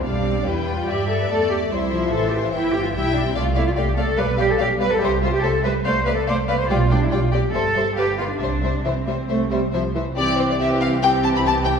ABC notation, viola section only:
X:1
M:4/4
L:1/8
Q:1/4=143
K:C
V:1 name="Viola section" clef=bass
G,2 G,4 A,2 | G, F, E,4 G,2 | A, A, A, A, G, G, G, G, | G, G, G, G, A, A, A, A, |
G, G, G, G, G, G, G, G, | G, G, E, G, A, G, F, E, | [E,C]2 [E,C]2 [E,C]4 |]